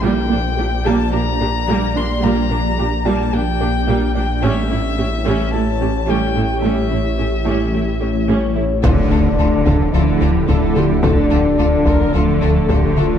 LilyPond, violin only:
\new Staff \with { instrumentName = "Violin" } { \time 4/4 \key d \minor \tempo 4 = 109 g''4. a''8 bes''4. c'''8 | bes''4. a''8 g''4. g''8 | e''2 a''4 g''4 | e''2. r4 |
r1 | r1 | }